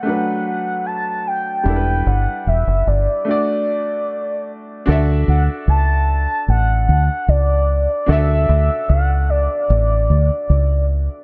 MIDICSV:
0, 0, Header, 1, 4, 480
1, 0, Start_track
1, 0, Key_signature, 2, "major"
1, 0, Tempo, 802139
1, 996, Time_signature, 4, 2, 24, 8
1, 6725, End_track
2, 0, Start_track
2, 0, Title_t, "Soft synth lead"
2, 0, Program_c, 0, 80
2, 0, Note_on_c, 0, 78, 100
2, 276, Note_off_c, 0, 78, 0
2, 282, Note_on_c, 0, 78, 84
2, 515, Note_on_c, 0, 81, 92
2, 524, Note_off_c, 0, 78, 0
2, 761, Note_on_c, 0, 79, 95
2, 770, Note_off_c, 0, 81, 0
2, 1239, Note_on_c, 0, 78, 93
2, 1248, Note_off_c, 0, 79, 0
2, 1478, Note_off_c, 0, 78, 0
2, 1483, Note_on_c, 0, 76, 82
2, 1721, Note_on_c, 0, 74, 81
2, 1730, Note_off_c, 0, 76, 0
2, 1959, Note_off_c, 0, 74, 0
2, 1964, Note_on_c, 0, 74, 81
2, 2657, Note_off_c, 0, 74, 0
2, 3165, Note_on_c, 0, 78, 98
2, 3249, Note_off_c, 0, 78, 0
2, 3406, Note_on_c, 0, 81, 114
2, 3858, Note_off_c, 0, 81, 0
2, 3885, Note_on_c, 0, 78, 109
2, 4362, Note_on_c, 0, 74, 99
2, 4371, Note_off_c, 0, 78, 0
2, 4843, Note_on_c, 0, 76, 107
2, 4852, Note_off_c, 0, 74, 0
2, 5320, Note_on_c, 0, 78, 98
2, 5329, Note_off_c, 0, 76, 0
2, 5560, Note_off_c, 0, 78, 0
2, 5564, Note_on_c, 0, 74, 90
2, 6497, Note_off_c, 0, 74, 0
2, 6725, End_track
3, 0, Start_track
3, 0, Title_t, "Grand piano"
3, 0, Program_c, 1, 0
3, 0, Control_c, 1, 64, 127
3, 17, Note_on_c, 1, 57, 62
3, 31, Note_on_c, 1, 62, 58
3, 42, Control_c, 1, 64, 0
3, 43, Note_on_c, 1, 54, 60
3, 55, Note_on_c, 1, 71, 66
3, 160, Control_c, 1, 64, 127
3, 968, Note_off_c, 1, 57, 0
3, 975, Note_off_c, 1, 62, 0
3, 978, Note_on_c, 1, 55, 59
3, 981, Note_off_c, 1, 54, 0
3, 987, Note_off_c, 1, 71, 0
3, 990, Note_on_c, 1, 62, 58
3, 1003, Control_c, 1, 64, 0
3, 1003, Note_on_c, 1, 64, 60
3, 1014, Note_on_c, 1, 69, 56
3, 1045, Note_off_c, 1, 69, 0
3, 1054, Note_on_c, 1, 71, 70
3, 1108, Control_c, 1, 64, 127
3, 1929, Note_off_c, 1, 55, 0
3, 1935, Note_off_c, 1, 62, 0
3, 1942, Note_off_c, 1, 64, 0
3, 1944, Note_on_c, 1, 57, 62
3, 1955, Note_on_c, 1, 62, 58
3, 1963, Control_c, 1, 64, 0
3, 1966, Note_on_c, 1, 66, 60
3, 1967, Note_off_c, 1, 71, 0
3, 1980, Note_on_c, 1, 74, 67
3, 2085, Control_c, 1, 64, 127
3, 2892, Note_off_c, 1, 57, 0
3, 2897, Note_off_c, 1, 62, 0
3, 2903, Note_off_c, 1, 66, 0
3, 2906, Note_on_c, 1, 62, 84
3, 2910, Note_off_c, 1, 74, 0
3, 2913, Note_on_c, 1, 66, 73
3, 2923, Note_on_c, 1, 69, 74
3, 2925, Control_c, 1, 64, 0
3, 2931, Note_on_c, 1, 74, 76
3, 2941, Note_on_c, 1, 76, 87
3, 3035, Control_c, 1, 64, 127
3, 4809, Note_off_c, 1, 62, 0
3, 4812, Note_off_c, 1, 66, 0
3, 4817, Note_off_c, 1, 69, 0
3, 4821, Note_off_c, 1, 74, 0
3, 4825, Note_on_c, 1, 62, 71
3, 4826, Note_off_c, 1, 76, 0
3, 4833, Note_on_c, 1, 66, 65
3, 4842, Note_on_c, 1, 69, 61
3, 4852, Note_on_c, 1, 74, 67
3, 4861, Note_on_c, 1, 76, 83
3, 6725, Note_off_c, 1, 62, 0
3, 6725, Note_off_c, 1, 66, 0
3, 6725, Note_off_c, 1, 69, 0
3, 6725, Note_off_c, 1, 74, 0
3, 6725, Note_off_c, 1, 76, 0
3, 6725, End_track
4, 0, Start_track
4, 0, Title_t, "Fingered electric bass"
4, 0, Program_c, 2, 33
4, 992, Note_on_c, 2, 28, 101
4, 1224, Note_off_c, 2, 28, 0
4, 1236, Note_on_c, 2, 31, 83
4, 1353, Note_off_c, 2, 31, 0
4, 1477, Note_on_c, 2, 28, 77
4, 1594, Note_off_c, 2, 28, 0
4, 1600, Note_on_c, 2, 30, 72
4, 1712, Note_off_c, 2, 30, 0
4, 1718, Note_on_c, 2, 31, 87
4, 1834, Note_off_c, 2, 31, 0
4, 2922, Note_on_c, 2, 38, 100
4, 3150, Note_off_c, 2, 38, 0
4, 3159, Note_on_c, 2, 38, 87
4, 3276, Note_off_c, 2, 38, 0
4, 3397, Note_on_c, 2, 37, 77
4, 3744, Note_off_c, 2, 37, 0
4, 3879, Note_on_c, 2, 33, 81
4, 4108, Note_off_c, 2, 33, 0
4, 4122, Note_on_c, 2, 38, 87
4, 4237, Note_off_c, 2, 38, 0
4, 4359, Note_on_c, 2, 37, 88
4, 4705, Note_off_c, 2, 37, 0
4, 4840, Note_on_c, 2, 38, 103
4, 5069, Note_off_c, 2, 38, 0
4, 5082, Note_on_c, 2, 38, 94
4, 5197, Note_off_c, 2, 38, 0
4, 5323, Note_on_c, 2, 37, 88
4, 5667, Note_off_c, 2, 37, 0
4, 5804, Note_on_c, 2, 33, 95
4, 6031, Note_off_c, 2, 33, 0
4, 6044, Note_on_c, 2, 38, 84
4, 6158, Note_off_c, 2, 38, 0
4, 6281, Note_on_c, 2, 37, 84
4, 6627, Note_off_c, 2, 37, 0
4, 6725, End_track
0, 0, End_of_file